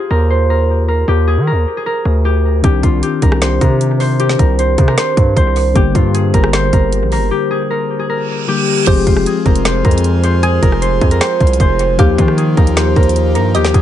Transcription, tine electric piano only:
2.62 D#3 C4 D4 G4
5.74 D3 G3 A#3 G4
8.47 D3 G3 A#3 G4
8.85 F3 G#3 C4 G#4
11.97 F3 A#3 D#4 G4

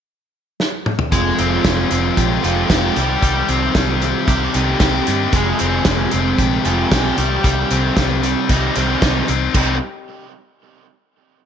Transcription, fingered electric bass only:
1.13 F1
1.39 F1
1.65 F1
1.91 F1
2.18 A#1
2.44 F1
2.70 F1
2.97 C2
3.23 C2
3.49 C2
3.75 C2
4.28 C2
4.55 C2
4.80 C2
5.08 G2
5.33 F1
5.61 F1
5.86 F1
6.14 F1
6.39 A#1
6.66 F1
6.92 B1
7.18 C2
7.44 C2
7.71 C2
7.97 C2
8.50 C2
8.77 C2
9.02 C2
9.29 C2
9.55 C2

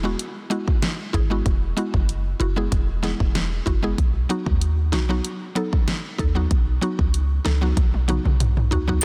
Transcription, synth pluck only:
0.03 G#3 B3 E4 F#4
0.50 G#3 B3 E4 F#4
1.13 E4 G#4
1.30 G#3 B3 E4 F#4
1.77 G#3 B3 E4 F#4
2.40 E4 F#4
2.56 G#3 B3 E4 G#4
3.03 G#3 B3 E4 G#4
3.66 E4 F#4
3.83 G#3 B3 E4 G#4
4.29 F#3 B3 D#4 F#4
4.92 D#4 F#4
5.09 F#3 B3 D#4 F#4
5.55 F#3 B3 D#4 A4
6.18 D#4 A4
6.35 F#3 B3 D#4 F#4
6.81 F#3 B3 D#4 F#4
7.45 D#4 A4
7.61 F#3 B3 D#4 F#4
8.08 F#3 B3 D#4 F#4
8.71 D#4 F#4
8.88 F#3 B3 D#4 F#4

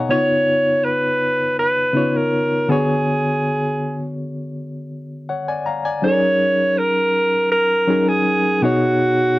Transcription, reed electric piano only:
Already playing: B2 B3 D#4 G#4 C#5 D#5 F5 F#5 G#5 A#5
0.09 C#3 B3 D#4 F4 C#5
1.93 C#3 B3 D#4 F4 C#5
2.69 D3 B3 F#4 G#4 C#5
5.29 C#5 F#5
5.48 D5 G#5
5.66 F5 A#5
5.85 D5 G#5
6.02 F#3 C#4 D#4 G#4 A4
6.12 A#4
7.87 F#3 C#4 D#4 G#4 A#4
8.62 B2 B3 D#4 G#4 C#5

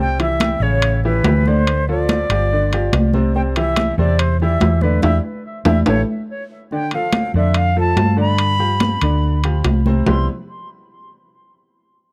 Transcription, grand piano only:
0.00 C3 C4 C5
0.19 E3 E4 G4
0.62 C#3 C#4 C#5
1.05 E3 E4 G4
1.26 E3 E4 G4
1.47 D3 D4 D5
1.89 F3 F4 A4
2.31 F3 F4 G4
2.52 D3 D4 D5
2.73 F3 F4 G4
3.14 C3 C4 C5
3.35 C3 C4 C5
3.57 E3 E4 G4
3.98 C3 C4 C5
4.42 E3 E4 G4
4.62 E3 E4 G4
4.83 D3 D4 D5
5.04 D4 E4 G4
5.66 D4 E4 G4
5.88 E4 G4 A4
6.72 D3 D4 D5
6.94 F3 F4 A4
7.36 D3 D4 D5
7.76 F3 F4 A4
8.17 D3 D4 D5
8.59 F3 F4 G4
9.03 D3 D4 D5
9.45 F3 F4 G4
9.86 C3 C4 C5
10.06 C3 G3 B3 C4 E4 G4

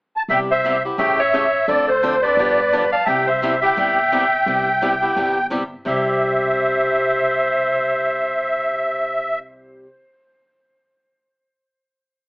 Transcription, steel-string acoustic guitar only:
0.29 C3 G3 B3 E4 G4
0.65 C3 G3 B3 E4 G4
0.85 B3 E4 G4
0.98 C#3 E3 A3 C#4 G4
1.33 C#3 E3 A3 C#4 G4
1.67 D3 F3 C4 D4 A4
2.03 D3 F3 C4 D4 A4
2.24 C4 D4 A4
2.39 D3 F3 B3 D4 G4
2.72 D3 F3 B3 D4 G4
3.07 C3 G3 B3 E4 G4
3.42 C3 G3 B3 E4 G4
3.62 B3 E4 G4
3.77 C3 G3 B3 E4 G4
4.12 C3 G3 B3 E4 G4
4.47 C3 G3 B3 E4 G4
4.82 C3 G3 B3 E4 G4
5.02 B3 E4 G4
5.16 C3 G3 B3 E4 G4
5.50 C3 G3 B3 E4 G4
5.85 C3 G3 E4 G4

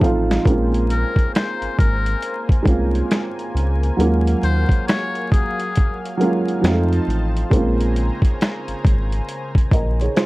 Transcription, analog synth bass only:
0.02 A1
0.46 A#1
1.62 G#1
1.79 G#1
2.66 C2
3.55 C#2
3.98 D#2
4.43 D#2
6.63 F2
7.08 A1
7.52 A#1
8.68 G#1
8.85 G#1
9.72 A#1

